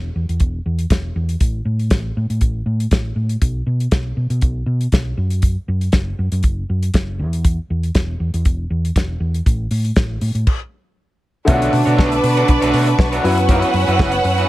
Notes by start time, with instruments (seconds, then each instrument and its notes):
0.15 fingered electric bass E2
0.29 fingered electric bass E2, closed hi-hat
0.40 fingered electric bass E1, kick, closed hi-hat
0.66 fingered electric bass E2
0.79 closed hi-hat
0.90 fingered electric bass E1, kick, snare, closed hi-hat
1.16 fingered electric bass E2
1.29 closed hi-hat
1.40 fingered electric bass A1, kick, closed hi-hat
1.65 fingered electric bass A2
1.79 closed hi-hat
1.90 fingered electric bass A1, kick, snare, closed hi-hat
2.17 fingered electric bass A2
2.30 fingered electric bass A2, closed hi-hat
2.41 fingered electric bass A1, kick, closed hi-hat
2.66 fingered electric bass A2
2.80 closed hi-hat
2.91 fingered electric bass A1, kick, snare, closed hi-hat
3.16 fingered electric bass A2
3.29 closed hi-hat
3.41 fingered electric bass B1, kick, closed hi-hat
3.66 fingered electric bass B2
3.80 closed hi-hat
3.91 fingered electric bass B1, kick, snare, closed hi-hat
4.17 fingered electric bass B2
4.30 fingered electric bass B2, closed hi-hat
4.41 fingered electric bass B1, kick, closed hi-hat
4.66 fingered electric bass B2
4.81 closed hi-hat
4.92 fingered electric bass B1, kick, snare, closed hi-hat
5.17 fingered electric bass F#2
5.30 closed hi-hat
5.42 kick, closed hi-hat
5.68 fingered electric bass F#2
5.81 closed hi-hat
5.92 fingered electric bass F#1, kick, snare, closed hi-hat
6.19 fingered electric bass F#2
6.32 fingered electric bass F#2, closed hi-hat
6.43 fingered electric bass F#1, kick, closed hi-hat
6.69 fingered electric bass F#2
6.83 closed hi-hat
6.94 fingered electric bass F#1, kick, snare, closed hi-hat
7.19 fingered electric bass E2
7.33 closed hi-hat
7.45 kick, closed hi-hat
7.70 fingered electric bass E2
7.83 closed hi-hat
7.95 fingered electric bass E1, kick, snare, closed hi-hat
8.20 fingered electric bass E2
8.34 fingered electric bass E2, closed hi-hat
8.45 fingered electric bass E1, kick, closed hi-hat
8.70 fingered electric bass E2
8.85 closed hi-hat
8.96 fingered electric bass E1, kick, snare, closed hi-hat
9.20 fingered electric bass E2
9.34 closed hi-hat
9.46 fingered electric bass A1, kick, closed hi-hat
9.71 fingered electric bass A2, open hi-hat
9.85 closed hi-hat
9.96 fingered electric bass A1, kick, snare, closed hi-hat
10.21 fingered electric bass A2, open hi-hat
10.35 fingered electric bass A2, closed hi-hat
10.47 kick, crash
11.45 fingered electric bass B1, grand piano D3 A3 B3 C#4 F4, violin section D4 B4, string section C#6 D6, kick, closed hi-hat
11.49 clean electric guitar A3 D4 F#4 C#5, string section B4 A5
11.54 grand piano F#4
11.62 closed hi-hat
11.73 fingered electric bass B2, muted clean electric guitar stroke, open hi-hat
11.85 fingered electric bass B2, clean electric guitar A3 D4 F#4 C#5, closed hi-hat
11.96 fingered electric bass B1, clean electric guitar A3 D4 F#4 C#5, kick, snare
12.11 muted clean electric guitar stroke, closed hi-hat
12.23 fingered electric bass B2, muted clean electric guitar stroke, open hi-hat
12.37 clean electric guitar A3 D4 F#4 C#5, closed hi-hat
12.48 fingered electric bass B1, muted clean electric guitar stroke, kick, closed hi-hat
12.62 fingered electric bass B1, clean electric guitar A3 D4 F#4 C#5, closed hi-hat
12.73 fingered electric bass B2, clean electric guitar A3 D4 F#4 C#5, open hi-hat
12.87 muted clean electric guitar stroke, closed hi-hat
12.98 fingered electric bass B1, muted clean electric guitar stroke, kick, snare
13.12 clean electric guitar A3 D4 F#4 C#5, closed hi-hat
13.22 fingered electric bass F#2, grand piano E3 F#3 B3 C#4 F#4, clean electric guitar B3 E4 F#4 B4, violin section C#4 B4 F#5, string section F#5 E6, open hi-hat
13.37 muted clean electric guitar stroke, closed hi-hat
13.49 clean electric guitar B3 E4 F#4 B4, kick, closed hi-hat
13.62 closed hi-hat
13.74 fingered electric bass F#2, muted clean electric guitar stroke, open hi-hat
13.87 fingered electric bass F#2, clean electric guitar B3 E4 F#4 B4, closed hi-hat
13.99 fingered electric bass F#1, clean electric guitar B3 E4 F#4 B4, kick, snare
14.12 muted clean electric guitar stroke, closed hi-hat
14.24 fingered electric bass F#2, muted clean electric guitar stroke, open hi-hat
14.38 clean electric guitar B3 E4 F#4 B4, closed hi-hat